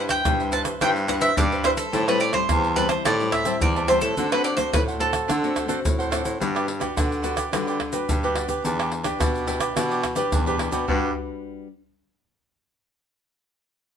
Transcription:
Already playing: G2 G3 D4 E4 B4 C5 E5
0.09 G5, pandeiro, tamborim, shaker, surdo
0.25 G2 G3 D4 E4 B4, pandeiro, tamborim, shaker, surdo
0.40 B4 C5 E5, pandeiro, shaker
0.51 E4 B4 C5 E5 A5, pandeiro, shaker
0.65 B4 C5 E5, pandeiro, tamborim, shaker, surdo
0.81 G2 G3 D4 E4 B4 C5 E5 G5, pandeiro, tamborim, shaker, surdo
0.96 pandeiro, shaker
1.08 D4 E4 B4 C5 E5 F#5, pandeiro, tamborim, shaker, surdo
1.21 E4 B4 C5 E5, pandeiro, shaker
1.37 G2 G3 D5, pandeiro, shaker, surdo
1.51 B4 C5 E5, pandeiro, shaker
1.64 D4 E4 B4 C5 E5, pandeiro, tamborim, shaker
1.77 A4 B4 C5 E5, pandeiro, shaker, surdo
1.93 A2 G3 C4 E4 G4 C5 E5 A5, pandeiro, shaker, surdo
2.08 G3 C4 E4 G4 B4 C5 E5 A5, pandeiro, tamborim, shaker
2.20 G4 C5 D5 E5, pandeiro
2.33 G3 C4 E4 C5, pandeiro, tamborim, shaker, surdo
2.49 E2 E3, pandeiro, tamborim, shaker, surdo
2.64 C5 E5 A5, pandeiro, shaker
2.76 G3 C4 E4 G4 B4 C5 E5 A5, pandeiro, shaker
2.89 C5 E5 A5, pandeiro, tamborim, shaker, surdo
3.05 A2 G4 C5 D5 E5 A5, pandeiro, tamborim, shaker, surdo
3.20 G3 C4 E4, pandeiro, shaker
3.32 G4 C5 E5 A5, pandeiro, tamborim, surdo
3.45 G3 C4 E4 G4 C5 E5 A5, pandeiro, shaker
3.61 E2 E3 D5, pandeiro, shaker, surdo
3.76 C5 E5 A5, pandeiro, shaker
3.87 G3 C4 E4 G4 C5 E5 A5, pandeiro, tamborim, shaker
4.01 A2 A4 C5 E5 A5, pandeiro, shaker, surdo
4.17 D3 A3 C4 D4 F#4 A4 C5 F#5, pandeiro, shaker, surdo
4.32 A3 C4 D4 F#4 A4 B4 C5 F#5, pandeiro, tamborim, shaker
4.44 D4 A4 C5 D5 F#5, pandeiro, shaker
4.57 A3 C4 F#4 C5, pandeiro, tamborim, shaker, surdo
4.73 A2 B4, pandeiro, tamborim, shaker, surdo
4.88 A4 C5 F#5, pandeiro, shaker
4.99 A3 C4 D4 F#4 A4 C5 F#5, pandeiro, shaker
5.12 A4 C5 F#5, pandeiro, tamborim, shaker, surdo
5.28 D3 D4 A4 C5 F#5, pandeiro, tamborim, shaker, surdo
5.43 A3 C4 F#4, pandeiro, shaker
5.55 D4 A4 C5 F#5, pandeiro, tamborim, shaker, surdo
5.68 A3 C4 D4 F#4 A4 C5 F#5, pandeiro, shaker
5.84 A2, pandeiro, shaker, surdo
5.99 A4 C5 F#5, pandeiro, shaker
6.10 A3 C4 D4 F#4 A4 C5 F#5, pandeiro, tamborim, shaker
6.23 A2 A4 C5 F#5, pandeiro, shaker, surdo
6.40 G2 G3 D4 F#4 G4 B4 D5, pandeiro, shaker, surdo
6.55 G4 B4 D5, pandeiro, tamborim, shaker
6.67 muted cavaquinho stroke, pandeiro
6.80 D4 F#4 G4 B4 D5, pandeiro, tamborim, shaker, surdo
6.96 D3 F#4 G4 B4 D5, pandeiro, tamborim, shaker, surdo
7.12 pandeiro, shaker
7.23 D4 F#4 G4 B4 D5, pandeiro, shaker
7.36 G4 B4 D5, pandeiro, tamborim, shaker, surdo
7.52 D3 G3 D4 F#4 G4 B4 D5, pandeiro, tamborim, shaker, surdo
7.67 G4 B4 D5, pandeiro, shaker
7.80 muted cavaquinho stroke, pandeiro, tamborim, surdo
7.92 D4 F#4 G4 B4 D5, pandeiro, shaker
8.08 G2 D3, pandeiro, shaker, surdo
8.23 D4 F#4 G4 B4 D5, pandeiro, shaker
8.35 F#4 G4 B4 D5, pandeiro, tamborim
8.48 D4 G4 B4 D5, pandeiro, shaker, surdo
8.64 E2 E3 E4 G4 B4 D5, pandeiro, shaker, surdo
8.79 G4 B4 D5, pandeiro, tamborim, shaker
8.91 muted cavaquinho stroke, pandeiro
9.03 D4 G4 B4 D5, pandeiro, tamborim, shaker, surdo
9.20 B2 E4 G4 B4 D5, pandeiro, tamborim, shaker, surdo
9.35 pandeiro, shaker
9.47 D4 E4 G4 B4 D5, pandeiro, shaker
9.60 G4 B4 D5, pandeiro, tamborim, shaker, surdo
9.76 B2 E3 D4 E4 G4 B4 D5, pandeiro, tamborim, shaker, surdo
9.90 G4 B4 D5, pandeiro, shaker
10.03 muted cavaquinho stroke, pandeiro, tamborim, shaker, surdo
10.15 D4 G4 B4 D5, pandeiro, shaker
10.32 E2 B2, pandeiro, shaker, surdo
10.46 D4 G4 B4 D5, pandeiro, shaker
10.58 E4 G4 B4 D5, pandeiro, tamborim
10.71 B2 D4 F#4 G4 B4 D5, pandeiro, shaker, surdo
10.88 G2 G3 D4 F#4 G4 B4 D5, surdo

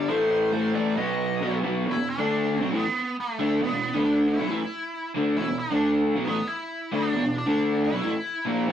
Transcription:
0.09 A2 E3 A3 C5
0.31 C5
0.52 A2 E3 A3
0.74 A2 E3 A3 D5
0.97 B2 F#3 B3 D#5
1.41 B2 F#3 B3
1.63 B2 F#3 B3
1.85 E2 B2
1.91 E4
1.96 E2 B2
2.10 D4
2.18 D3 A3 D4
2.60 B2 F#3 C4
2.71 A2 E3
2.76 B3
3.20 A3
3.39 D3 A3 D4
3.61 E2 B2 B3
3.73 E2 B2
3.93 D3 A3 D4
4.05 D4
4.28 E4
4.38 B2 F#3
4.49 A2 E3
5.15 D3 A3 D4
5.37 E2 B2 E4
5.48 E2 B2
5.59 D4
5.71 D3 A3 D4
6.16 B2 F#3
6.25 A2 E3 B3
6.47 E4
6.92 D3 A3 D4
7.13 E2 B2
7.25 E2 B2
7.38 D4
7.46 D3 A3 D4
7.84 E4
7.91 B2 F#3
8.02 A2 E3
8.46 A#2 F3 A#3
8.67 B2 F#3 B3

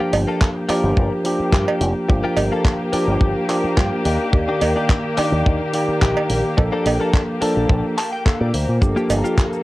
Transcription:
Already playing: F3 A#3 D4 G4
0.00 A#3 F4 G4
0.13 G1, open hi-hat, cowbell
0.27 A#3 F4 A4
0.41 kick, clap
0.68 F3 A#3 D4 F4 G4 A#4, muted fingered electric bass stroke, clap, open hi-hat, cowbell
0.84 G1
0.97 G1, kick
1.24 F3 A#3 D4 G4, open hi-hat
1.40 muted fingered electric bass stroke
1.52 G2 A#3 F4 G4, kick, clap
1.68 cowbell
1.81 F1, open hi-hat
2.08 G1 F3 A#3 D4 G4, muted clean electric guitar stroke, kick
2.24 A#3 F4 G4
2.37 G1, open hi-hat, cowbell
2.52 A#3 F4 A4
2.65 kick, clap
2.93 F3 A#3 D4 F4 G4, muted fingered electric bass stroke, open hi-hat
3.08 G1
3.21 G1, kick
3.49 F3 A#3 D4 G4, clap, open hi-hat
3.64 muted fingered electric bass stroke
3.77 G2 A#3 F4 G4, kick, clap
4.05 D#2 D4 D#4 G4, open hi-hat
4.33 D#2 D#3 A#3 G4 D5, kick
4.48 D4 D#4 G4
4.61 D#2, open hi-hat, cowbell
4.76 D4 D#4 G4
4.89 kick, clap
5.17 D#3 A#3 D4 D#4 G4 D5, muted fingered electric bass stroke, clap, open hi-hat, cowbell
5.32 D#2
5.46 D#2, kick
5.73 D#3 A#3 G4 D5, open hi-hat
5.88 muted fingered electric bass stroke
6.01 A#1 D4 D#4 G4, kick, clap
6.17 cowbell
6.30 A#1, open hi-hat
6.57 A#1 F3 A#3 D4 A4, muted clean electric guitar stroke, kick, cowbell
6.72 A#3 D4 A4
6.86 A#1, open hi-hat, cowbell
7.00 A#3 D4 A4
7.13 kick, clap
7.41 F3 A#3 D4 A4, muted fingered electric bass stroke, open hi-hat
7.57 A#1
7.69 A#1, kick
7.98 A5, clap, open hi-hat
8.13 G5
8.25 A#3 D4 A4 F5, kick, clap
8.41 A#2 D5
8.54 D2 C5, open hi-hat
8.68 A#2
8.81 G1 F3 A#3 D4 G4 A4, muted clean electric guitar stroke, kick, shaker
8.96 A#3 F4 G4, shaker
9.10 G1, open hi-hat, cowbell, shaker
9.24 A#3 F4 G4, shaker
9.38 kick, clap, shaker
9.53 shaker

